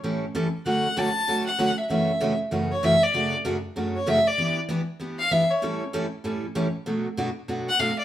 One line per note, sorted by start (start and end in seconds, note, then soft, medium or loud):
0.04 0.24 A2 medium
0.04 0.24 E3 medium
0.04 0.24 G3 medium
0.04 0.24 C#4 medium
0.04 0.25 E4 medium
0.04 0.25 A4 medium
0.35 0.46 A2 medium
0.35 0.46 E3 medium
0.35 0.46 G3 medium
0.35 0.46 C#4 medium
0.35 0.47 E4 medium
0.35 0.47 A4 medium
0.66 0.86 D3 medium
0.66 0.86 F#3 medium
0.66 0.87 A3 medium
0.66 0.87 C#4 medium
0.66 0.87 F#4 medium
0.66 0.99 F#5 medium
0.97 1.08 D3 medium
0.97 1.08 F#3 medium
0.97 1.08 A3 medium
0.97 1.08 C#4 medium
0.97 1.09 F#4 medium
0.97 1.46 A5 loud
1.28 1.48 D3 medium
1.28 1.48 F#3 medium
1.28 1.49 A3 medium
1.28 1.49 C#4 medium
1.28 1.49 F#4 medium
1.47 1.79 F#5 medium
1.58 1.70 D3 medium
1.58 1.70 F#3 medium
1.58 1.70 A3 medium
1.58 1.70 C#4 medium
1.58 1.70 F#4 medium
1.78 1.89 E5 medium
1.90 2.10 F#2 medium
1.90 2.10 C#3 medium
1.90 2.10 E3 medium
1.90 2.11 A3 medium
1.90 2.11 C#4 medium
1.90 2.11 F#4 medium
1.90 2.37 E5 medium
2.20 2.32 F#2 medium
2.20 2.32 C#3 medium
2.20 2.32 E3 medium
2.20 2.32 A3 medium
2.20 2.32 C#4 medium
2.20 2.32 F#4 medium
2.51 2.72 F#2 medium
2.51 2.72 C#3 medium
2.51 2.72 E3 medium
2.51 2.72 A3 medium
2.51 2.72 C#4 medium
2.51 2.73 F#4 medium
2.72 2.86 C#5 medium
2.83 2.94 F#2 medium
2.83 2.94 C#3 medium
2.83 2.94 E3 medium
2.83 2.94 A3 medium
2.83 2.95 C#4 medium
2.83 2.95 F#4 medium
2.83 3.05 E5 loud
3.03 3.34 D5 loud
3.14 3.34 F#2 medium
3.14 3.34 C#3 medium
3.14 3.34 F#3 medium
3.14 3.35 A3 medium
3.14 3.35 D4 medium
3.14 3.35 F#4 medium
3.45 3.56 F#2 medium
3.45 3.56 C#3 medium
3.45 3.56 F#3 medium
3.45 3.56 A3 medium
3.45 3.56 D4 medium
3.45 3.56 F#4 medium
3.76 3.96 F#2 medium
3.76 3.96 C#3 medium
3.76 3.97 F#3 medium
3.76 3.97 A3 medium
3.76 3.97 D4 medium
3.76 3.97 F#4 medium
3.96 4.10 C#5 medium
4.06 4.18 F#2 medium
4.06 4.18 C#3 medium
4.06 4.18 F#3 medium
4.06 4.18 A3 medium
4.06 4.18 D4 medium
4.06 4.19 F#4 medium
4.06 4.29 E5 loud
4.27 4.58 D5 loud
4.38 4.58 E3 medium
4.38 4.58 B3 medium
4.38 4.59 D4 medium
4.38 4.59 G4 medium
4.69 4.80 E3 medium
4.69 4.80 B3 medium
4.69 4.80 D4 medium
4.69 4.81 G4 medium
5.00 5.20 E3 medium
5.00 5.20 B3 medium
5.00 5.21 D4 medium
5.00 5.21 G4 medium
5.19 5.33 F5 loud
5.31 5.42 E3 medium
5.31 5.42 B3 medium
5.31 5.43 D4 medium
5.31 5.43 G4 medium
5.31 5.52 E5 medium
5.51 5.82 C#5 medium
5.62 5.82 A2 medium
5.62 5.82 E3 medium
5.62 5.83 G3 medium
5.62 5.83 C#4 medium
5.62 5.83 E4 medium
5.62 5.83 A4 medium
5.93 6.04 A2 medium
5.93 6.04 E3 medium
5.93 6.05 G3 medium
5.93 6.05 C#4 medium
5.93 6.05 E4 medium
5.93 6.05 A4 medium
6.24 6.44 A2 medium
6.24 6.45 E3 medium
6.24 6.45 G3 medium
6.24 6.45 C#4 medium
6.24 6.45 E4 medium
6.24 6.45 A4 medium
6.55 6.66 A2 medium
6.55 6.66 E3 medium
6.55 6.66 G3 medium
6.55 6.67 C#4 medium
6.55 6.67 E4 medium
6.55 6.67 A4 medium
6.86 7.07 B2 medium
6.86 7.07 F#3 medium
6.86 7.07 A3 medium
6.86 7.07 D4 medium
6.86 7.07 F#4 medium
7.17 7.28 B2 medium
7.17 7.29 F#3 medium
7.17 7.29 A3 medium
7.17 7.29 D4 medium
7.17 7.29 F#4 medium
7.48 7.69 B2 medium
7.48 7.69 F#3 medium
7.48 7.69 A3 medium
7.48 7.69 D4 medium
7.48 7.69 F#4 medium
7.69 7.81 F#5 loud
7.79 7.90 B2 medium
7.79 7.91 F#3 medium
7.79 7.91 A3 medium
7.79 7.91 D4 medium
7.79 7.91 F#4 medium
7.79 7.98 F5 medium
7.99 8.04 D5 medium